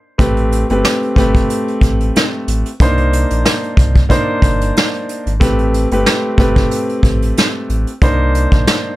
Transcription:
0.18 A1 A3 C4 G4 B4, kick, closed hi-hat
0.37 closed hi-hat
0.52 closed hi-hat
0.70 G1 A3 C4 G4 B4, closed hi-hat
0.85 snare, closed hi-hat
1.03 closed hi-hat
1.16 G1 A3 C4 G4 B4, kick, closed hi-hat
1.35 kick, closed hi-hat
1.50 closed hi-hat
1.68 closed hi-hat
1.81 A1, kick, closed hi-hat
2.00 closed hi-hat
2.16 snare, closed hi-hat
2.48 A1, closed hi-hat
2.66 closed hi-hat
2.80 C2 A#3 D4 D#4 C5, kick, closed hi-hat
2.97 closed hi-hat
3.13 closed hi-hat
3.30 A#1, closed hi-hat
3.45 snare, closed hi-hat
3.63 closed hi-hat
3.77 C2, kick, closed hi-hat
3.96 kick, closed hi-hat
4.09 A#3 D4 D#4 C5, kick, closed hi-hat
4.42 G1, kick, closed hi-hat
4.61 closed hi-hat
4.76 snare, closed hi-hat
4.94 closed hi-hat
5.09 closed hi-hat
5.26 G#1, closed hi-hat
5.40 A1 A3 C4 G4 B4, kick, closed hi-hat
5.59 closed hi-hat
5.74 closed hi-hat
5.91 G1 A3 C4 G4 B4, closed hi-hat
6.06 snare, closed hi-hat
6.38 G1 A3 C4 G4 B4, kick, closed hi-hat
6.56 kick, closed hi-hat
6.71 closed hi-hat
6.89 closed hi-hat
7.03 A1, kick, closed hi-hat
7.22 closed hi-hat
7.37 snare, closed hi-hat
7.69 A1, closed hi-hat
7.87 closed hi-hat
8.02 C2 A#3 D4 D#4 C5, kick, closed hi-hat
8.35 closed hi-hat
8.52 A#1, kick, closed hi-hat
8.67 snare, closed hi-hat

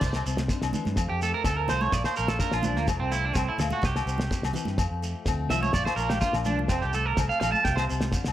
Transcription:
0.01 C2 C3, kick, snare, crash, shekere
0.13 snare, low agogo, shekere
0.26 C2 C4, shekere
0.37 snare, high conga
0.48 kick, snare, shekere
0.53 D4
0.62 C2, snare, low agogo, shekere
0.73 E3, high conga, low conga, shekere
0.85 G2, snare, high conga
0.96 F2, kick, snare, low agogo, shekere
1.09 F2 G4
1.21 A3 A4, snare, shekere
1.34 A#4
1.44 D2 C4 A4, kick, snare, low agogo, shekere
1.58 A#4
1.68 C2 F3 C5, snare, low conga, low agogo, shekere
1.81 C#5, high conga, shekere
1.92 A#1 A#2 D5, kick, snare, shekere
2.04 C5, snare, low agogo, shekere
2.16 A#1 A#3 A#4, shekere
2.28 A4, snare, high conga
2.39 D4 A#4, kick, snare, shekere
2.52 A#1 F4, snare, low agogo
2.63 F3 D4, high conga, low conga, shekere
2.76 D2 A#3, snare, high conga
2.88 F1 F2, muted clean electric guitar stroke, kick, snare, low agogo, shekere
3.00 C2 C4
3.12 A3 E4, snare, shekere
3.25 D4
3.34 C2 A2 C4, kick, snare, low agogo, shekere
3.49 E4
3.58 D2 A#2, muted clean electric guitar stroke, snare, low conga, low agogo, shekere
3.70 F#4, high conga, shekere
3.82 C2 C3 G4, kick, snare, shekere
3.96 snare, low agogo, shekere
4.06 C2 C4, shekere
4.18 snare, high conga
4.31 muted steel-string acoustic guitar stroke, kick, snare, shekere
4.42 C2, snare, low agogo, shekere
4.53 E3, low conga, shekere
4.65 G2, snare, high conga
4.78 F2, kick, snare, low agogo, shekere
4.90 F2
5.02 A3, shekere
5.26 D2 C4, kick, snare, low agogo, shekere
5.49 C2 F3 E5, snare, low conga, low agogo, shekere
5.63 C#5, high conga, shekere
5.73 A#1 A#2 D5, kick, snare, shekere
5.85 C5, snare, low agogo, shekere
5.96 A#1 A#3 A#4, shekere
6.09 G4, snare, high conga, shekere
6.21 D4 F4, kick, snare, shekere
6.33 A#1, muted clean electric guitar stroke, snare, low agogo
6.45 F3 D4, high conga, shekere
6.57 C2, high conga
6.68 F1 F2 C4, kick, snare, low agogo, shekere
6.82 C2 G4, shekere
6.93 A3 A4, snare, shekere
7.06 A#4
7.17 C2 C4, kick, snare, low conga, low agogo, shekere
7.29 F5, shekere
7.40 A#1 F3 F5, snare, low conga, low agogo, shekere
7.52 A5, high conga, shekere
7.64 C2 C3 G5, kick, snare, shekere
7.76 C5, snare, low agogo, shekere
7.89 C2 C4, shekere
8.01 snare, high conga
8.12 D3, kick, snare, shekere
8.24 C2, snare, low agogo, shekere

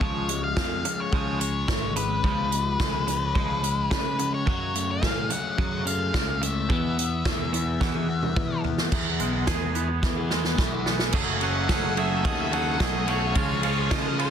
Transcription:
Already playing: C#5
0.01 C#2 C#3 F3 G#3, kick
0.29 C#3 F3 G#3, closed hi-hat
0.44 F5
0.56 F2 C#3 F3 G#4 F5, kick, snare
0.85 C#3 F3 C#4, closed hi-hat
1.00 C#5
1.12 C#2 C#3 F3 G#3 G#4, kick
1.40 C#3 F3 G#3 C#5, closed hi-hat
1.68 G#1 C#3 F3 C#4, kick, snare
1.96 C#3 F3 G#3 B4, closed hi-hat
2.24 C#2 C#3 F3 G#3, kick
2.51 C#3 F3 G#3, closed hi-hat
2.80 C#2 C#3 F3 G#4, kick, snare
3.07 C#3 F3 C#4, closed hi-hat
3.35 C#2 C#3 F3 G#3 G#4, kick
3.63 C#3 F3 G#3, closed hi-hat
3.91 C#3 F3 C#4 B4, kick, snare
4.19 C#3 F3 G#3, closed hi-hat
4.34 C#5
4.46 F#2 C#3 F#3, kick
4.74 F#2 C#3 A3, closed hi-hat
4.91 F5
5.02 F#2 A2 C#3 G#4, kick, snare
5.30 F#2 C#3 C#4 F#5, closed hi-hat
5.58 F#2 C#3 F#3 G#4, kick
5.85 F#2 C#3 A3 F5, closed hi-hat
6.13 C#2 F#2 C#3 C#4, kick, snare
6.42 F#2 C#3 A3 E5, closed hi-hat
6.69 E2 B2 E3 B3, kick
6.97 E2 B2 B3, closed hi-hat
7.25 E2 B2 G#4, kick, snare
7.53 E2 B2 E4, closed hi-hat
7.80 E2 B2 E3 G#4, kick, snare
7.95 high tom
8.09 B2 B3
8.23 mid tom
8.36 E2 B2 E3 E4, kick, mid tom
8.64 E2 B2 B3, floor tom
8.78 snare
8.91 E2 B3 E4 G#4, kick, crash
9.20 B1 G#3, closed hi-hat
9.33 E4 G#4
9.47 E2 B3 E4 G#4, kick, snare, closed hi-hat
9.75 B3 E4 G#4, closed hi-hat
9.89 muted overdriven electric guitar stroke
10.03 E2 E3, kick, snare
10.17 E4 G#4
10.30 G#3 B3 E4 G#4, snare
10.44 muted overdriven electric guitar stroke, snare
10.57 B1 E3 B3 E4 G#4, kick, snare
10.72 E4 G#4
10.86 B3 E4 G#4, snare
10.99 snare
11.12 F#1 F#2 C#3 F#3 A3 C#4 F#4 G#4 A4, kick, crash
11.41 F#2 C#3 F#3 A3 C#4 F#4 G#4 F#5, ride
11.68 F#1 F#2 C#3 F#3 A3 C#4 F#4 G#4 F#5, kick, snare, ride
11.96 F#2 C#3 F#3 A3 C#4 F#4 G#4 E5, ride
12.23 D#2 F#2 C#3 F#3 A3 C#4 F#4 G#4 D#5, kick, ride
12.40 E5
12.51 F#2 C#3 F#3 A3 C#4 F#4 G#4 F#5, ride
12.79 B1 F#2 C#3 F#3 A3 C#4 F#4 G#4 D#5, kick, snare, ride
13.07 F#2 C#3 F#3 A3 C#4 F#4 G#4 C#5, ride
13.35 C#2 C#3 F3 G#3 C#4 F4 G#4, kick, ride
13.63 C#3 F3 G#3 C#4 F4 G#4 C#5, ride
13.90 C#3 F3 G#3 C#4 F4 G#4 D#5, kick, snare, ride
14.18 C#3 F3 G#3 C#4 F4 G#4 C#5, ride

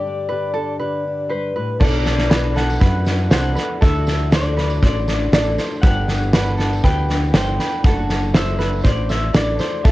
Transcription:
Already playing: G2 D3 G4 D5
0.07 D4
0.29 D3 G4 B4
0.54 D4 A4
0.79 D3 G4 B4
1.07 D4
1.29 G2 B4 C5
1.56 A2 B4
1.80 B1 A3 B3 D4 F#4 A4 D5, kick, snare, crash, tambourine
1.93 tambourine
2.06 D4 F#4 A4, snare, tambourine
2.18 snare, tambourine
2.29 B3 D4 F#4 B4, snare, tambourine
2.34 A4
2.45 tambourine
2.55 D4 F#4 A4 F#5, snare
2.70 tambourine
2.80 F#2 B4, kick, snare
2.95 tambourine
3.05 D4 F#4 A4, snare, tambourine
3.19 tambourine
3.30 C2 B3 D4 F#4 A4 C5 F#5, snare, tambourine
3.55 B4, snare, tambourine
3.81 D2 D3 F#3 A3 D4 F#4 A4 E5, kick, snare, tambourine
3.94 tambourine
4.07 F#4 A4, snare, tambourine
4.11 D4
4.19 tambourine
4.31 A3 D4 F#4 A4 C5, snare, tambourine
4.35 D5
4.45 tambourine
4.57 D4 F#4 A4 B4, snare
4.70 tambourine
4.82 A1 C5 D5, kick, snare, tambourine
4.96 tambourine
5.08 D4 F#4 A4, snare, tambourine
5.21 tambourine
5.32 A1 A3 D4 F#4 A4 D5, snare, tambourine
5.58 C5, snare, tambourine
5.71 tambourine
5.82 G1 G3 A3 B3 D4 G4 A4 F#5, kick, snare, tambourine
5.97 tambourine
6.08 D4 G4 A4, snare, tambourine
6.22 tambourine
6.33 B3 D4 G4 A4 B4, snare, tambourine
6.48 tambourine
6.57 D4 G4 A4, snare
6.73 tambourine
6.84 D2 B4 G5, kick, snare, tambourine
6.98 tambourine
7.08 D4 G4 A4, snare
7.23 tambourine
7.33 G1 B3 D4 G4 A4 C5 G5, snare, tambourine
7.60 B4, snare, tambourine
7.73 tambourine
7.84 F#1 F#3 A3 D4 F#4 A4 F#5, kick, snare, tambourine
7.98 tambourine
8.09 D4 F#4 A4, snare, tambourine
8.23 tambourine
8.34 A3 D4 C5 E5, snare, tambourine
8.38 F#4 A4
8.49 tambourine
8.59 F#4 A4 B4, snare, tambourine
8.63 D4
8.73 tambourine
8.83 A1 C5 D5, kick, snare, tambourine
8.97 tambourine
9.09 D4 F#4 A4 E5, snare, tambourine
9.22 tambourine
9.33 A1 A3 D4 F#4 D5, snare, tambourine
9.37 A4
9.59 C5, snare, tambourine
9.72 tambourine
9.84 B1 B3 D4 F#4 A4 F#5, kick, snare, tambourine
9.88 A4

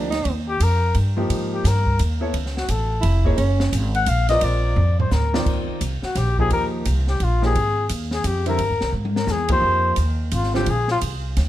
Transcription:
Already playing: D2
0.10 D#4, snare, ride
0.25 D#2, kick, ride
0.49 G4
0.60 F2 A#4, kick, hi-hat pedal, ride
0.94 G2, kick, ride
1.17 F3 A#3 D#4 G4
1.29 G#2, kick, ride
1.54 G4
1.64 G2 A#4, kick, snare, hi-hat pedal, ride
1.86 kick
1.99 D#2, hi-hat pedal, ride
2.20 B3 E4 A4 C#5
2.34 C#2, kick, ride
2.46 snare
2.57 F#4, snare
2.68 A1 A4, kick, hi-hat pedal, ride
3.01 F1 E4, kick, ride
3.25 A#3 D#4 G#4 C#5, kick
3.36 F#1 C#4, kick, ride
3.60 snare
3.72 G#1, kick, hi-hat pedal, ride
3.95 F#5, ride
4.06 A#1 F5, kick, hi-hat pedal, ride
4.29 C4 F4 A#4 D5 D#5, snare, ride
4.41 A#1 D5, kick, ride
4.76 F2, floor tom
5.00 C5, floor tom
5.11 D2 A#4, snare, hi-hat pedal
5.33 D#3 C4 F4 A#4 D5, snare
5.46 D#2, kick, crash
5.68 muted upright bass stroke
5.81 C2, kick, hi-hat pedal, ride
6.03 F#4, muted upright bass stroke, snare
6.15 A#1 G4, kick, snare, hi-hat pedal, ride
6.38 F3 A#3 D#4 G4 G#4, kick
6.50 D#2 A#4, kick, ride
6.85 C2, kick, hi-hat pedal, ride
7.07 G4, snare
7.20 A#1 F4, kick, ride
7.42 F3 A#3 D#4 G4 G#4, snare
7.55 G#1, kick, ride
7.89 D#2, kick, hi-hat pedal, ride
8.11 G#4, snare
8.24 F2 G4, kick, hi-hat pedal, ride
8.46 D3 G3 C4 E4 A#4, ride
8.58 G2, kick, ride
8.70 E2
8.81 C2, snare
8.92 G#2
9.05 high tom
9.16 A#4, snare
9.27 E2, snare, hi-hat pedal
9.31 G#4
9.48 F3 A#3 D#4 G4 C5, kick, ride
9.62 F2
9.96 D#2, kick, hi-hat pedal, ride
10.31 G#1 F4, kick, hi-hat pedal, ride
10.43 snare
10.54 D3 G3 C4 F4 G4, snare
10.66 A#1, kick, ride
10.70 G#4
10.88 F4, snare
11.01 C2, kick, hi-hat pedal, ride
11.37 D2, kick, snare, ride

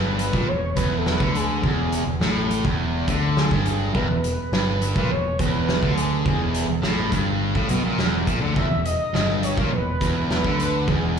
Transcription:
Already playing: G1 G2 B4
0.19 closed hi-hat
0.33 A#1 A#2, kick
0.47 E1 E2 C#5
0.76 E1 E2 B4, kick, closed hi-hat
0.98 A4
1.06 B4, snare
1.19 D2 D3, kick
1.35 G#4, closed hi-hat
1.63 E1 E2 G#4, kick
1.92 closed hi-hat
2.06 E1 E2
2.21 A1 A2, snare
2.51 closed hi-hat
2.65 E1 E2, kick
3.08 D2 D3, kick, closed hi-hat
3.37 G#4, snare
3.51 G1 G2, kick
3.65 G#4, closed hi-hat
3.94 E1 E2 B4, kick
4.09 E1 E2
4.24 closed hi-hat
4.52 G1 G2, snare
4.82 closed hi-hat
4.96 A#1 A#2, kick
5.10 E1 E2 C#5
5.38 E1 E2 B4, kick, closed hi-hat
5.66 B4, snare
5.82 D2 D3, kick
5.94 G#4, closed hi-hat
6.24 E1 E2 G#4, kick
6.54 closed hi-hat
6.68 E1 E2
6.82 A1 A2, snare
7.11 G1 G2, kick, closed hi-hat
7.54 A1 A2, kick
7.69 B1 B2, closed hi-hat
7.83 A#1 A#2
7.98 E1 E2, snare
8.27 A#1 A#2, kick, closed hi-hat
8.41 D2 D3
8.55 E1 E2 E5, kick
8.70 E1 E2
8.85 D#5, closed hi-hat
9.13 G1 G2, snare
9.43 C#5, closed hi-hat
9.57 A#1 A#2, kick
9.71 E1 E2 B4
10.01 E1 E2, kick, closed hi-hat
10.29 B4, snare
10.44 D2 D3, kick
10.60 closed hi-hat
10.87 E1 E2 G#4, kick

